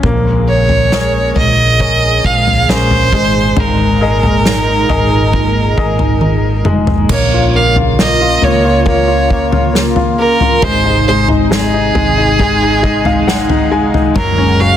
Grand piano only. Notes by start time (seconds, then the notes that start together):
0.05 A#3
0.93 G#4 A#4 C#5
1.80 G#4 A#4 C#5
2.69 C#4 G#4 A#4
3.13 G#3
4.01 G#4 A#4 D#5
4.89 G#4 A#4 D#5
5.77 G#4 A#4 D#5
6.66 G#3
7.11 A#3
7.34 F4
7.55 A#3
7.77 F4
8.00 A#3
8.21 F4
8.43 A#3
8.64 F4
8.87 A#3
9.08 F4
9.30 A#3
9.52 F4
9.73 A#3
9.96 F4
10.19 A#3
10.41 F4
10.63 G#3
10.85 D#4
11.08 G#3
11.29 D#4
11.51 G#3
11.74 D#4
11.95 G#3
12.18 D#4
12.40 G#3
12.62 D#4
12.83 G#3 D#5
13.05 D#4 F5
13.28 G#3 F#5
13.50 D#4
13.71 G#3 G#5
13.94 D#4
14.15 F#3
14.38 C#4
14.60 F#4